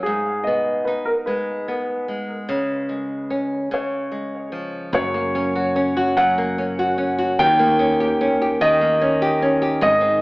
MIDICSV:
0, 0, Header, 1, 4, 480
1, 0, Start_track
1, 0, Key_signature, 6, "major"
1, 0, Tempo, 813008
1, 37, Time_signature, 6, 3, 24, 8
1, 6032, End_track
2, 0, Start_track
2, 0, Title_t, "Grand piano"
2, 0, Program_c, 0, 0
2, 17, Note_on_c, 0, 68, 70
2, 257, Note_on_c, 0, 75, 73
2, 273, Note_off_c, 0, 68, 0
2, 500, Note_on_c, 0, 71, 59
2, 513, Note_off_c, 0, 75, 0
2, 622, Note_on_c, 0, 70, 70
2, 631, Note_off_c, 0, 71, 0
2, 651, Note_off_c, 0, 70, 0
2, 743, Note_on_c, 0, 71, 58
2, 2206, Note_on_c, 0, 73, 62
2, 2407, Note_off_c, 0, 71, 0
2, 2901, Note_off_c, 0, 73, 0
2, 2919, Note_on_c, 0, 73, 79
2, 3641, Note_on_c, 0, 78, 85
2, 3666, Note_off_c, 0, 73, 0
2, 4364, Note_on_c, 0, 79, 102
2, 4387, Note_off_c, 0, 78, 0
2, 4882, Note_off_c, 0, 79, 0
2, 5084, Note_on_c, 0, 75, 95
2, 5791, Note_off_c, 0, 75, 0
2, 5800, Note_on_c, 0, 75, 104
2, 6032, Note_off_c, 0, 75, 0
2, 6032, End_track
3, 0, Start_track
3, 0, Title_t, "Nylon-string guitar"
3, 0, Program_c, 1, 24
3, 0, Note_on_c, 1, 54, 44
3, 0, Note_on_c, 1, 58, 48
3, 0, Note_on_c, 1, 61, 55
3, 37, Note_on_c, 1, 44, 66
3, 81, Note_off_c, 1, 54, 0
3, 83, Note_off_c, 1, 58, 0
3, 83, Note_off_c, 1, 61, 0
3, 278, Note_on_c, 1, 59, 52
3, 516, Note_on_c, 1, 63, 56
3, 751, Note_on_c, 1, 56, 52
3, 986, Note_off_c, 1, 59, 0
3, 993, Note_on_c, 1, 59, 51
3, 1228, Note_off_c, 1, 56, 0
3, 1230, Note_on_c, 1, 56, 47
3, 1468, Note_on_c, 1, 49, 67
3, 1474, Note_off_c, 1, 44, 0
3, 1522, Note_off_c, 1, 59, 0
3, 1523, Note_off_c, 1, 63, 0
3, 1706, Note_off_c, 1, 56, 0
3, 1706, Note_on_c, 1, 56, 45
3, 1951, Note_on_c, 1, 61, 54
3, 2184, Note_off_c, 1, 49, 0
3, 2192, Note_on_c, 1, 49, 66
3, 2240, Note_off_c, 1, 56, 0
3, 2430, Note_on_c, 1, 56, 45
3, 2669, Note_on_c, 1, 53, 44
3, 2911, Note_on_c, 1, 42, 80
3, 2964, Note_off_c, 1, 53, 0
3, 2965, Note_off_c, 1, 56, 0
3, 2966, Note_off_c, 1, 49, 0
3, 3036, Note_on_c, 1, 58, 56
3, 3157, Note_off_c, 1, 61, 0
3, 3159, Note_on_c, 1, 61, 61
3, 3279, Note_on_c, 1, 66, 57
3, 3397, Note_off_c, 1, 61, 0
3, 3400, Note_on_c, 1, 61, 60
3, 3516, Note_off_c, 1, 66, 0
3, 3523, Note_on_c, 1, 66, 64
3, 3637, Note_off_c, 1, 42, 0
3, 3644, Note_on_c, 1, 42, 89
3, 3764, Note_off_c, 1, 58, 0
3, 3766, Note_on_c, 1, 58, 56
3, 3884, Note_off_c, 1, 61, 0
3, 3886, Note_on_c, 1, 61, 64
3, 4001, Note_off_c, 1, 66, 0
3, 4008, Note_on_c, 1, 66, 63
3, 4118, Note_off_c, 1, 61, 0
3, 4120, Note_on_c, 1, 61, 60
3, 4235, Note_off_c, 1, 66, 0
3, 4242, Note_on_c, 1, 66, 67
3, 4366, Note_on_c, 1, 51, 76
3, 4413, Note_off_c, 1, 66, 0
3, 4415, Note_off_c, 1, 42, 0
3, 4483, Note_off_c, 1, 58, 0
3, 4483, Note_on_c, 1, 58, 60
3, 4601, Note_off_c, 1, 61, 0
3, 4601, Note_on_c, 1, 61, 59
3, 4725, Note_on_c, 1, 67, 59
3, 4839, Note_off_c, 1, 61, 0
3, 4846, Note_on_c, 1, 61, 67
3, 4962, Note_off_c, 1, 67, 0
3, 4969, Note_on_c, 1, 67, 65
3, 5082, Note_off_c, 1, 51, 0
3, 5084, Note_on_c, 1, 51, 87
3, 5196, Note_off_c, 1, 58, 0
3, 5203, Note_on_c, 1, 58, 51
3, 5315, Note_off_c, 1, 61, 0
3, 5322, Note_on_c, 1, 61, 58
3, 5435, Note_off_c, 1, 67, 0
3, 5442, Note_on_c, 1, 67, 72
3, 5556, Note_off_c, 1, 61, 0
3, 5564, Note_on_c, 1, 61, 62
3, 5671, Note_off_c, 1, 67, 0
3, 5679, Note_on_c, 1, 67, 68
3, 5794, Note_on_c, 1, 44, 85
3, 5847, Note_off_c, 1, 58, 0
3, 5847, Note_off_c, 1, 67, 0
3, 5849, Note_off_c, 1, 61, 0
3, 5910, Note_on_c, 1, 60, 55
3, 6032, Note_off_c, 1, 44, 0
3, 6032, Note_off_c, 1, 51, 0
3, 6032, Note_off_c, 1, 60, 0
3, 6032, End_track
4, 0, Start_track
4, 0, Title_t, "Fretless electric bass"
4, 0, Program_c, 2, 35
4, 2909, Note_on_c, 2, 30, 97
4, 4338, Note_off_c, 2, 30, 0
4, 4364, Note_on_c, 2, 39, 107
4, 5777, Note_off_c, 2, 39, 0
4, 5798, Note_on_c, 2, 32, 108
4, 6032, Note_off_c, 2, 32, 0
4, 6032, End_track
0, 0, End_of_file